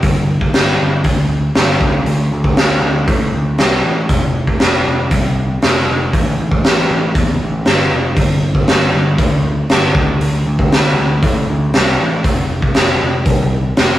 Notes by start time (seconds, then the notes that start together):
0.03 G1, kick, open hi-hat
0.41 kick
0.54 G1, snare, open hi-hat
0.81 G1
1.04 D2, kick, open hi-hat
1.55 G1, snare, open hi-hat
1.81 D2, kick
2.06 D2, open hi-hat
2.32 D2
2.44 kick
2.57 D2, snare, open hi-hat
2.82 D2
3.08 A2, kick, open hi-hat
3.34 D2
3.58 C2, snare, open hi-hat
3.84 A1
4.09 F1, kick, open hi-hat
4.47 kick
4.60 F1, snare, open hi-hat
4.87 F1
5.11 C2, kick, open hi-hat
5.62 F1, snare, open hi-hat
5.89 F1
6.13 A1, kick, open hi-hat
6.40 A1
6.52 kick
6.65 A1, snare, open hi-hat
6.91 A1
7.15 E2, kick, open hi-hat
7.41 A1
7.66 G1, snare, open hi-hat
7.92 F1
8.17 G1, kick, open hi-hat
8.55 kick
8.68 G1, snare, open hi-hat
8.94 G1
9.18 D2, kick, open hi-hat
9.70 G1, snare, open hi-hat
9.95 D2, kick
10.21 D2, open hi-hat
10.47 D2
10.59 kick
10.72 D2, snare, open hi-hat
10.98 D2
11.23 A2, kick, open hi-hat
11.49 D2
11.74 C2, snare, open hi-hat
12.00 A1
12.24 F1, kick, open hi-hat
12.62 kick
12.75 F1, snare, open hi-hat
13.02 F1
13.26 C2, kick, open hi-hat
13.77 F1, snare, open hi-hat